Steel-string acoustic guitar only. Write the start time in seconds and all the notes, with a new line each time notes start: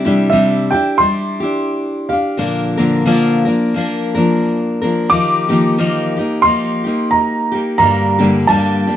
0.05 C3 G3 D4 E4 G4
0.32 C3 G3 D4 E4 G4
0.72 D4 E4 G4
1.00 G3 D4 E4 G4
1.40 D4 E4 G4
2.09 D4 G4
2.37 A#2 D3 F3 A#3 D4 A#4
2.77 A#2 D3 F3 A#3 D4 A#4
3.06 A#2 D3 F3 A#3 D4 A#4
3.45 F3 A#3 D4 A#4
3.74 F3 A#3 D4 A#4
4.15 F3 A#3 D4 A#4
4.82 F3 A#3 D4 A#4
5.10 D#3 F3 A#3 D#4 G4
5.49 D#3 F3 A#3 D#4 G4
5.78 D#3 F3 A#3 D#4 G4
6.17 D#4 G4
6.21 A#3
6.44 F3 A#3 D#4 G4
6.84 A#3 D#4 G4
7.52 A#3 D#4 G4
7.79 G2 D3 G3 A#3 D4 G4
8.19 G2 D3 G3 A#3 D4 G4
8.48 G2 D3 G3 A#3 D4 G4
8.87 G3 A#3 D4 G4